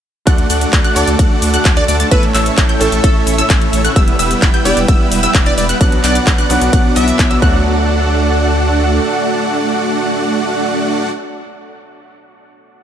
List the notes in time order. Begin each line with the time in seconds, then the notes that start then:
0.26 D2 D3 A3 D4 F#4 A4 D5 F#5 D6 F#6, kick, closed hi-hat, ride, cabasa
0.38 closed hi-hat
0.50 D2 A3 D4 F#4 D5 F#5 F#6, open hi-hat, ride, cabasa
0.61 closed hi-hat, cabasa
0.73 D2, kick, clap, closed hi-hat, ride, cabasa
0.84 A3 D4 F#4 D5 F#5 F#6, closed hi-hat
0.95 D2 D3 A3 D4 F#4 A4 D5, open hi-hat, ride, cabasa
1.08 D2, closed hi-hat, cabasa
1.19 D2 A3 D4 F#4 D5 F#5 F#6, kick, closed hi-hat, ride, cabasa
1.42 D2, open hi-hat, ride, cabasa
1.54 A3 D4 F#4 D5 F#5 F#6, closed hi-hat, cabasa
1.65 D2, kick, clap, closed hi-hat, ride, cabasa
1.77 D5, closed hi-hat
1.88 D2 D5, open hi-hat, ride, cabasa
2.00 A3 D4 F#4 D5 A5 A6, closed hi-hat, cabasa
2.10 A1 A2 A3 C#4 E4 A4 B4 E5 C#6 E6, kick, closed hi-hat, ride, cabasa
2.23 closed hi-hat
2.34 A1 A3 C#4 E4 C#5 E5 E6, clap, open hi-hat, ride, cabasa
2.46 closed hi-hat, cabasa
2.58 A1, kick, clap, closed hi-hat, ride, cabasa
2.69 A3 C#4 E4 C#5 G5 G6, closed hi-hat
2.80 A1 A2 A3 C#4 E4 A4, open hi-hat, ride, cabasa
2.92 A1, closed hi-hat, cabasa
3.04 A1 A3 C#4 E4 C#5 E5 E6, kick, closed hi-hat, ride, cabasa
3.27 A1, open hi-hat, ride, cabasa
3.38 A3 C#4 E4 C#5 E5 E6, closed hi-hat, cabasa
3.50 A1, kick, clap, closed hi-hat, ride, cabasa
3.62 closed hi-hat
3.73 A1, open hi-hat, ride, cabasa
3.85 A3 C#4 E4 C#5 F#5 F#6, closed hi-hat, cabasa
3.95 E1 G3 B3 E4 G4 B4 E5 G5 E6, kick, closed hi-hat, ride, cabasa
4.08 closed hi-hat
4.19 E1 G3 B3 E4 B4 E5 E6, open hi-hat, ride, cabasa
4.31 closed hi-hat, cabasa
4.42 E1, kick, clap, closed hi-hat, ride, cabasa
4.54 G3 B3 E4 B4 G5 G6, closed hi-hat
4.64 E1 G3 B3 E4 G4 D5, open hi-hat, ride, cabasa
4.77 E1, closed hi-hat, cabasa
4.88 E1 G3 B3 E4 B4 E5 E6, kick, closed hi-hat, ride, cabasa
5.11 E1, open hi-hat, ride, cabasa
5.23 G3 B3 E4 B4 E5 E6, closed hi-hat, cabasa
5.34 E1, kick, clap, closed hi-hat, ride, cabasa
5.46 D5, closed hi-hat
5.58 E1 D5, open hi-hat, ride, cabasa
5.69 G3 B3 E4 B4 F#5 F#6, closed hi-hat, cabasa
5.80 B1 B2 F#3 B3 D4 F#4 D5 F#5 D6 F#6, kick, closed hi-hat, ride, cabasa
5.92 closed hi-hat
6.04 B1 B3 D4 F#4 D5 F#5 F#6, clap, open hi-hat, ride, cabasa
6.15 closed hi-hat, cabasa
6.27 B1, kick, clap, closed hi-hat, ride, cabasa
6.38 B3 D4 F#4 D5 F#5 F#6, closed hi-hat
6.49 B1 B2 F#3 B3 D4 F#4, open hi-hat, ride, cabasa
6.61 B1, closed hi-hat, cabasa
6.73 B1 B3 D4 F#4 F#5 F#6, kick, closed hi-hat, ride, cabasa
6.95 B1 B2 F#3 B3 D4 F#4 E5, open hi-hat, ride, cabasa
7.08 closed hi-hat, cabasa
7.19 B1, kick, clap, closed hi-hat, ride, cabasa
7.31 B3 D4 F#4 D5 E5 E6, closed hi-hat
7.40 D2 F#3 A3 D4 F#4 A4 D5 F#5 F#6, kick